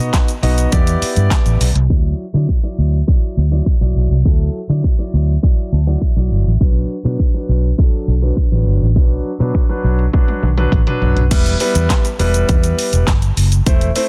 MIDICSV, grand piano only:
0, 0, Header, 1, 2, 480
1, 0, Start_track
1, 0, Key_signature, 1, "minor"
1, 0, Tempo, 588235
1, 1550, Time_signature, 4, 2, 24, 8
1, 11494, End_track
2, 0, Start_track
2, 0, Title_t, "Grand piano"
2, 0, Program_c, 0, 0
2, 0, Note_on_c, 0, 59, 90
2, 0, Note_on_c, 0, 63, 82
2, 0, Note_on_c, 0, 66, 80
2, 0, Note_on_c, 0, 75, 100
2, 230, Note_off_c, 0, 59, 0
2, 231, Note_off_c, 0, 63, 0
2, 231, Note_off_c, 0, 66, 0
2, 232, Note_off_c, 0, 75, 0
2, 347, Note_on_c, 0, 59, 90
2, 348, Note_on_c, 0, 63, 79
2, 349, Note_on_c, 0, 66, 82
2, 351, Note_on_c, 0, 75, 98
2, 575, Note_off_c, 0, 59, 0
2, 587, Note_on_c, 0, 59, 91
2, 589, Note_off_c, 0, 63, 0
2, 589, Note_on_c, 0, 64, 83
2, 590, Note_off_c, 0, 66, 0
2, 590, Note_on_c, 0, 67, 86
2, 591, Note_off_c, 0, 75, 0
2, 591, Note_on_c, 0, 74, 102
2, 1357, Note_off_c, 0, 59, 0
2, 1358, Note_off_c, 0, 64, 0
2, 1358, Note_off_c, 0, 67, 0
2, 1359, Note_off_c, 0, 74, 0
2, 1547, Note_on_c, 0, 54, 86
2, 1550, Note_on_c, 0, 64, 79
2, 1551, Note_on_c, 0, 74, 91
2, 1819, Note_off_c, 0, 54, 0
2, 1821, Note_off_c, 0, 64, 0
2, 1822, Note_off_c, 0, 74, 0
2, 1907, Note_on_c, 0, 54, 86
2, 1909, Note_on_c, 0, 64, 79
2, 1911, Note_on_c, 0, 74, 93
2, 2089, Note_off_c, 0, 54, 0
2, 2090, Note_off_c, 0, 64, 0
2, 2091, Note_off_c, 0, 74, 0
2, 2147, Note_on_c, 0, 54, 78
2, 2149, Note_on_c, 0, 64, 75
2, 2151, Note_on_c, 0, 74, 94
2, 2420, Note_off_c, 0, 54, 0
2, 2420, Note_off_c, 0, 64, 0
2, 2422, Note_off_c, 0, 74, 0
2, 2507, Note_on_c, 0, 54, 81
2, 2509, Note_on_c, 0, 64, 75
2, 2511, Note_on_c, 0, 74, 90
2, 2779, Note_off_c, 0, 54, 0
2, 2781, Note_off_c, 0, 64, 0
2, 2781, Note_off_c, 0, 74, 0
2, 2867, Note_on_c, 0, 54, 83
2, 2869, Note_on_c, 0, 64, 77
2, 2871, Note_on_c, 0, 74, 89
2, 3049, Note_off_c, 0, 54, 0
2, 3050, Note_off_c, 0, 64, 0
2, 3051, Note_off_c, 0, 74, 0
2, 3107, Note_on_c, 0, 54, 87
2, 3110, Note_on_c, 0, 64, 77
2, 3112, Note_on_c, 0, 74, 95
2, 3379, Note_off_c, 0, 54, 0
2, 3381, Note_off_c, 0, 64, 0
2, 3382, Note_off_c, 0, 74, 0
2, 3468, Note_on_c, 0, 54, 86
2, 3470, Note_on_c, 0, 64, 78
2, 3472, Note_on_c, 0, 69, 93
2, 3740, Note_off_c, 0, 54, 0
2, 3741, Note_off_c, 0, 64, 0
2, 3742, Note_off_c, 0, 69, 0
2, 3827, Note_on_c, 0, 54, 88
2, 3829, Note_on_c, 0, 64, 78
2, 3832, Note_on_c, 0, 74, 93
2, 4009, Note_off_c, 0, 54, 0
2, 4010, Note_off_c, 0, 64, 0
2, 4011, Note_off_c, 0, 74, 0
2, 4067, Note_on_c, 0, 54, 84
2, 4069, Note_on_c, 0, 64, 77
2, 4071, Note_on_c, 0, 74, 94
2, 4339, Note_off_c, 0, 54, 0
2, 4340, Note_off_c, 0, 64, 0
2, 4341, Note_off_c, 0, 74, 0
2, 4427, Note_on_c, 0, 54, 81
2, 4430, Note_on_c, 0, 64, 75
2, 4432, Note_on_c, 0, 74, 93
2, 4671, Note_on_c, 0, 81, 72
2, 4700, Note_off_c, 0, 54, 0
2, 4701, Note_off_c, 0, 64, 0
2, 4702, Note_off_c, 0, 74, 0
2, 4782, Note_off_c, 0, 81, 0
2, 4789, Note_on_c, 0, 54, 81
2, 4791, Note_on_c, 0, 64, 76
2, 4791, Note_on_c, 0, 78, 70
2, 4793, Note_on_c, 0, 74, 88
2, 4902, Note_off_c, 0, 78, 0
2, 4970, Note_off_c, 0, 54, 0
2, 4971, Note_off_c, 0, 64, 0
2, 4972, Note_off_c, 0, 74, 0
2, 5028, Note_on_c, 0, 54, 87
2, 5030, Note_on_c, 0, 64, 79
2, 5032, Note_on_c, 0, 74, 98
2, 5300, Note_off_c, 0, 54, 0
2, 5301, Note_off_c, 0, 64, 0
2, 5302, Note_off_c, 0, 74, 0
2, 5389, Note_on_c, 0, 54, 88
2, 5391, Note_on_c, 0, 62, 81
2, 5393, Note_on_c, 0, 71, 96
2, 5660, Note_off_c, 0, 54, 0
2, 5661, Note_off_c, 0, 62, 0
2, 5662, Note_off_c, 0, 71, 0
2, 5749, Note_on_c, 0, 54, 90
2, 5751, Note_on_c, 0, 62, 80
2, 5753, Note_on_c, 0, 71, 93
2, 5930, Note_off_c, 0, 54, 0
2, 5931, Note_off_c, 0, 62, 0
2, 5932, Note_off_c, 0, 71, 0
2, 5989, Note_on_c, 0, 54, 82
2, 5991, Note_on_c, 0, 62, 75
2, 5993, Note_on_c, 0, 71, 94
2, 6260, Note_off_c, 0, 54, 0
2, 6261, Note_off_c, 0, 62, 0
2, 6263, Note_off_c, 0, 71, 0
2, 6348, Note_on_c, 0, 54, 84
2, 6351, Note_on_c, 0, 62, 78
2, 6352, Note_on_c, 0, 69, 91
2, 6620, Note_off_c, 0, 54, 0
2, 6621, Note_off_c, 0, 62, 0
2, 6622, Note_off_c, 0, 69, 0
2, 6709, Note_on_c, 0, 54, 85
2, 6711, Note_on_c, 0, 62, 77
2, 6713, Note_on_c, 0, 71, 93
2, 6890, Note_off_c, 0, 54, 0
2, 6891, Note_off_c, 0, 62, 0
2, 6892, Note_off_c, 0, 71, 0
2, 6949, Note_on_c, 0, 54, 89
2, 6951, Note_on_c, 0, 62, 80
2, 6953, Note_on_c, 0, 71, 97
2, 7220, Note_off_c, 0, 54, 0
2, 7221, Note_off_c, 0, 62, 0
2, 7223, Note_off_c, 0, 71, 0
2, 7309, Note_on_c, 0, 54, 89
2, 7311, Note_on_c, 0, 62, 83
2, 7313, Note_on_c, 0, 71, 100
2, 7580, Note_off_c, 0, 54, 0
2, 7581, Note_off_c, 0, 62, 0
2, 7582, Note_off_c, 0, 71, 0
2, 7669, Note_on_c, 0, 54, 91
2, 7671, Note_on_c, 0, 62, 84
2, 7673, Note_on_c, 0, 71, 97
2, 7850, Note_off_c, 0, 54, 0
2, 7851, Note_off_c, 0, 62, 0
2, 7852, Note_off_c, 0, 71, 0
2, 7909, Note_on_c, 0, 54, 90
2, 7911, Note_on_c, 0, 62, 78
2, 7913, Note_on_c, 0, 71, 95
2, 8180, Note_off_c, 0, 54, 0
2, 8181, Note_off_c, 0, 62, 0
2, 8182, Note_off_c, 0, 71, 0
2, 8268, Note_on_c, 0, 54, 84
2, 8270, Note_on_c, 0, 62, 76
2, 8273, Note_on_c, 0, 71, 89
2, 8540, Note_off_c, 0, 54, 0
2, 8541, Note_off_c, 0, 62, 0
2, 8542, Note_off_c, 0, 71, 0
2, 8628, Note_on_c, 0, 54, 84
2, 8630, Note_on_c, 0, 62, 79
2, 8632, Note_on_c, 0, 71, 92
2, 8810, Note_off_c, 0, 54, 0
2, 8811, Note_off_c, 0, 62, 0
2, 8812, Note_off_c, 0, 71, 0
2, 8868, Note_on_c, 0, 54, 88
2, 8870, Note_on_c, 0, 62, 84
2, 8872, Note_on_c, 0, 71, 104
2, 9140, Note_off_c, 0, 54, 0
2, 9141, Note_off_c, 0, 62, 0
2, 9142, Note_off_c, 0, 71, 0
2, 9228, Note_on_c, 0, 55, 88
2, 9230, Note_on_c, 0, 59, 80
2, 9231, Note_on_c, 0, 64, 85
2, 9232, Note_on_c, 0, 71, 101
2, 9410, Note_off_c, 0, 55, 0
2, 9411, Note_off_c, 0, 59, 0
2, 9411, Note_off_c, 0, 64, 0
2, 9412, Note_off_c, 0, 71, 0
2, 9468, Note_on_c, 0, 55, 89
2, 9469, Note_on_c, 0, 59, 81
2, 9470, Note_on_c, 0, 64, 79
2, 9471, Note_on_c, 0, 71, 101
2, 9830, Note_off_c, 0, 55, 0
2, 9831, Note_off_c, 0, 59, 0
2, 9831, Note_off_c, 0, 64, 0
2, 9832, Note_off_c, 0, 71, 0
2, 9948, Note_on_c, 0, 55, 89
2, 9949, Note_on_c, 0, 59, 82
2, 9951, Note_on_c, 0, 64, 81
2, 9952, Note_on_c, 0, 71, 97
2, 10671, Note_off_c, 0, 55, 0
2, 10671, Note_off_c, 0, 59, 0
2, 10672, Note_off_c, 0, 64, 0
2, 10673, Note_off_c, 0, 71, 0
2, 11149, Note_on_c, 0, 57, 93
2, 11150, Note_on_c, 0, 60, 82
2, 11151, Note_on_c, 0, 64, 86
2, 11153, Note_on_c, 0, 72, 99
2, 11330, Note_off_c, 0, 57, 0
2, 11331, Note_off_c, 0, 60, 0
2, 11331, Note_off_c, 0, 64, 0
2, 11332, Note_off_c, 0, 72, 0
2, 11389, Note_on_c, 0, 57, 93
2, 11390, Note_on_c, 0, 60, 84
2, 11391, Note_on_c, 0, 64, 86
2, 11393, Note_on_c, 0, 72, 98
2, 11494, Note_off_c, 0, 57, 0
2, 11494, Note_off_c, 0, 60, 0
2, 11494, Note_off_c, 0, 64, 0
2, 11494, Note_off_c, 0, 72, 0
2, 11494, End_track
0, 0, End_of_file